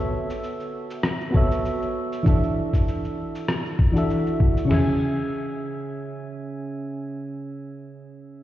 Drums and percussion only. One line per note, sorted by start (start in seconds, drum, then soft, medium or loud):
0.30 cabasa medium
0.44 cabasa soft
0.60 cabasa soft
0.90 cabasa medium
1.03 cross-stick medium
1.03 cabasa soft
1.21 cabasa soft
1.34 kick medium
1.51 cabasa medium
1.65 cabasa soft
1.82 cabasa soft
2.12 cabasa medium
2.26 kick loud
2.26 cabasa soft
2.44 cabasa soft
2.73 kick medium
2.73 cabasa medium
2.88 cabasa soft
3.05 cabasa soft
3.35 cabasa medium
3.48 cross-stick medium
3.48 cabasa soft
3.66 cabasa soft
3.79 kick medium
3.96 cabasa medium
4.10 cabasa soft
4.27 cabasa soft
4.40 kick medium
4.57 cabasa medium
4.71 snare medium
4.71 floor tom medium
4.71 crash medium